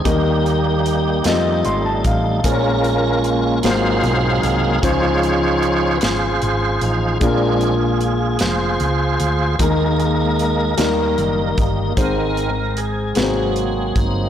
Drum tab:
HH |xxxxxx|xxxxxx|xxxxxx|xxxxxx|
SD |---o--|---o--|---o--|---o--|
BD |o----o|o-----|o-----|o-----|

HH |xxxxxx|xxxxxx|
SD |---o--|---o--|
BD |o----o|o----o|